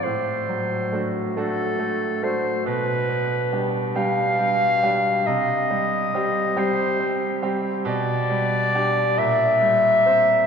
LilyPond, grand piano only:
\new Staff \with { instrumentName = "Grand piano" } { \time 6/8 \key g \phrygian \tempo 4. = 46 a,8 fis8 <a d' fis'>8 <a d' fis'>8 a8 <a d' fis'>8 | b,8 b8 <g d' g'>8 <g d' g'>8 g8 <g d' g'>8 | c8 g8 <g c' g'>8 <g c' g'>8 c'8 <g c' g'>8 | b,8 g8 <d' g'>8 bes,8 g8 <c' c''>8 | }